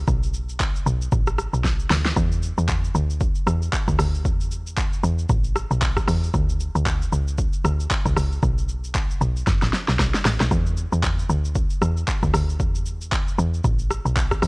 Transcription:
0.08 B1, kick, shaker
0.23 shaker
0.34 shaker
0.49 shaker
0.60 kick, clap, shaker
0.76 shaker
0.86 B1, shaker
1.02 shaker
1.12 A1, kick, shaker
1.27 cross-stick, shaker
1.38 cross-stick, shaker
1.53 B1, shaker
1.64 kick, snare, shaker
1.80 shaker
1.90 D2, snare, open hi-hat, shaker
2.06 snare, shaker
2.16 E2, kick, shaker
2.32 shaker
2.43 shaker
2.58 E2, shaker
2.69 kick, clap, shaker
2.84 shaker
2.95 D2, shaker
3.10 shaker
3.21 kick, shaker
3.35 shaker
3.47 E2, cross-stick, shaker
3.62 shaker
3.73 kick, clap, shaker
3.88 D2, kick, shaker
3.99 D2, cross-stick, open hi-hat, shaker
4.15 shaker
4.25 E2, kick, shaker
4.41 shaker
4.51 shaker
4.67 shaker
4.77 kick, clap, shaker
4.93 shaker
5.03 E2, shaker
5.19 shaker
5.29 A1, kick, shaker
5.44 shaker
5.56 cross-stick, shaker
5.71 B1, shaker
5.82 kick, clap, shaker
5.97 kick, cross-stick, shaker
6.08 E2, cross-stick, open hi-hat, shaker
6.23 shaker
6.34 D2, kick, shaker
6.49 shaker
6.60 shaker
6.75 D2, shaker
6.86 kick, clap, shaker
7.02 shaker
7.12 C#2, shaker
7.28 shaker
7.38 kick, shaker
7.53 shaker
7.64 D2, cross-stick, shaker
7.80 shaker
7.91 kick, clap, shaker
8.05 C#2, kick, shaker
8.16 C#2, cross-stick, open hi-hat, shaker
8.32 shaker
8.43 B1, kick, shaker
8.58 shaker
8.69 shaker
8.84 shaker
8.95 kick, clap, shaker
9.11 shaker
9.21 B1, shaker
9.36 shaker
9.47 F#1, kick, snare, shaker
9.62 A1, snare, shaker
9.73 snare, shaker
9.88 B1, snare, shaker
9.99 B1, kick, snare, shaker
10.14 snare, shaker
10.25 A1, snare, open hi-hat, shaker
10.40 B1, snare, shaker
10.51 E2, kick, shaker
10.67 shaker
10.77 shaker
10.93 E2, shaker
11.03 kick, clap, shaker
11.19 shaker
11.30 D2, shaker
11.45 shaker
11.55 kick, shaker
11.70 shaker
11.82 E2, cross-stick, shaker
11.97 shaker
12.08 kick, clap, shaker
12.23 D2, kick, shaker
12.34 D2, cross-stick, open hi-hat, shaker
12.49 shaker
12.60 E2, kick, shaker
12.75 shaker
12.86 shaker
13.01 shaker
13.12 kick, clap, shaker
13.28 shaker
13.38 E2, shaker
13.54 shaker
13.64 A1, kick, shaker
13.79 shaker
13.91 cross-stick, shaker
14.06 B1, shaker
14.17 kick, clap, shaker
14.32 kick, cross-stick, shaker
14.42 E2, cross-stick, open hi-hat, shaker

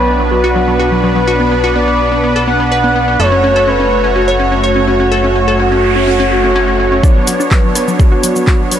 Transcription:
Already playing: B1 B3 D4 B4
0.20 F#3
0.31 F#3 F#4
0.44 F#4
0.56 F#3
0.68 F#3
0.79 F#4
0.92 F#3
1.03 F#3 B4
1.16 F#3
1.27 F#4
1.40 B3
1.51 B3
1.64 F#4
1.76 B3 D5
1.88 B3
2.12 B3
2.24 B3
2.36 A4
2.47 B3 F#5
2.60 B3
2.72 B4
2.84 B3
2.96 B3
3.08 B3
3.19 F#1 A3 F#4 A4 C#5
3.32 C#4
3.44 C#4
3.56 A4
3.67 C#4 B4
3.80 C#4
4.04 C#4
4.15 C#4 F#4
4.28 C#5
4.40 C#4
4.52 C#4
4.64 C#5
4.76 C#4
4.87 C#4 F#4
5.00 C#4
5.12 A4, noise sweep
5.24 C#4
5.36 C#4
5.48 A4
5.59 C#4 F#4
5.72 C#4
5.96 C#4
6.08 C#4
6.20 C#4
6.31 C#4 F#4
6.44 C#4
6.56 C#4
6.68 C#4
6.80 C#4
6.92 C#4
7.03 B3 D4 C#5, kick, cabasa
7.16 F#3
7.27 F#3, open hi-hat, cabasa
7.40 D4, cabasa
7.51 F#3 B4, kick, clap, cabasa
7.64 F#3
7.75 B3 D4 C#5, cross-stick, open hi-hat, cabasa
7.88 F#3, cabasa
7.99 F#3 F#4, kick, cabasa
8.12 F#4
8.23 F#3, open hi-hat, cabasa
8.36 F#3, cabasa
8.47 F#4, kick, cross-stick, clap, cabasa
8.60 F#3
8.71 F#3 B4, open hi-hat, cabasa

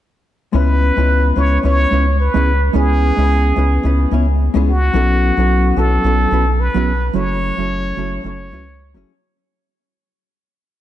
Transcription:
0.53 C#2 G#3 B3 C#4 E4 B4
0.97 C#2 G#3 B3 C#4 E4 B4
1.36 C#2 G#3 B3 C#4 E4 B4 C#5
1.63 C#2 G#3 B3 C#4 E4 B4 C#5
1.91 C#2 G#3 B3 C#4 E4 C#5
2.20 B4
2.34 C#2 G#3 B3 C#4 E4 G#4
2.73 C#2 G#3 B3 C#4 E4 G#4 B4
3.16 C#2 G#3 B3 C#4 E4 B4
3.56 C#2 G#3 B3 C#4 E4 B4
3.83 C#2 G#3 B3 C#4 E4 B4
4.11 C#2 G#3 B3 C#4 E4 C#5
4.54 C#2 G#3 B3 C#4 E4 G#4
4.68 F#4
4.93 B1 F#3 B3 C#4 E4 A4
5.37 B1 F#3 B3 C#4 E4 A4
5.76 B1 F#3 B3 C#4 E4 A4
6.04 B1 F#3 B3 C#4 E4 A4
6.31 B1 F#3 B3 C#4 E4 B4
6.60 B4
6.74 B1 F#3 B3 C#4 E4 G#4
7.13 F#1 F#3 A3 C#4 E4 A4 C#5
7.57 F#1 F#3 A3 C#4 E4 A4
7.96 F#1 F#3 A3 C#4 E4 A4
8.24 F#1 F#3 A3 C#4 E4 A4 C#5
8.51 C#2 F#3 A3 C#4 E4 B4
8.94 F#1 F#3 A3 C#4 E4 G#4

